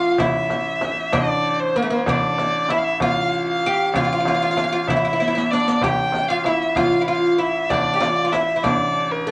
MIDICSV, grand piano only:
0, 0, Header, 1, 2, 480
1, 0, Start_track
1, 0, Tempo, 626763
1, 142, Time_signature, 6, 3, 24, 8
1, 7130, End_track
2, 0, Start_track
2, 0, Title_t, "Grand piano"
2, 0, Program_c, 0, 0
2, 0, Note_on_c, 0, 33, 83
2, 112, Note_off_c, 0, 33, 0
2, 141, Note_on_c, 0, 33, 99
2, 367, Note_off_c, 0, 33, 0
2, 381, Note_on_c, 0, 33, 73
2, 832, Note_off_c, 0, 33, 0
2, 862, Note_on_c, 0, 33, 96
2, 1552, Note_off_c, 0, 33, 0
2, 1581, Note_on_c, 0, 33, 105
2, 2271, Note_off_c, 0, 33, 0
2, 2299, Note_on_c, 0, 33, 90
2, 2990, Note_off_c, 0, 33, 0
2, 3016, Note_on_c, 0, 33, 100
2, 3244, Note_off_c, 0, 33, 0
2, 3258, Note_on_c, 0, 33, 81
2, 3710, Note_off_c, 0, 33, 0
2, 3735, Note_on_c, 0, 33, 92
2, 4428, Note_off_c, 0, 33, 0
2, 4455, Note_on_c, 0, 33, 92
2, 5148, Note_off_c, 0, 33, 0
2, 5178, Note_on_c, 0, 33, 91
2, 5869, Note_off_c, 0, 33, 0
2, 5899, Note_on_c, 0, 33, 91
2, 6126, Note_off_c, 0, 33, 0
2, 6138, Note_on_c, 0, 33, 78
2, 6590, Note_off_c, 0, 33, 0
2, 6615, Note_on_c, 0, 33, 100
2, 7130, Note_off_c, 0, 33, 0
2, 7130, End_track
0, 0, End_of_file